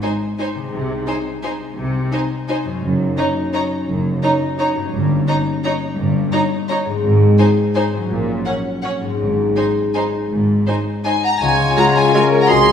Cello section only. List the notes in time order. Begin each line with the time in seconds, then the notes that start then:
0.73 C3
1.78 C3
2.83 F#2
3.88 F#2
4.93 G2
5.98 G2
7.03 G#2
8.11 A#2
9.19 G#2
10.30 G#2
11.77 F4
12.14 A#4
12.49 G#4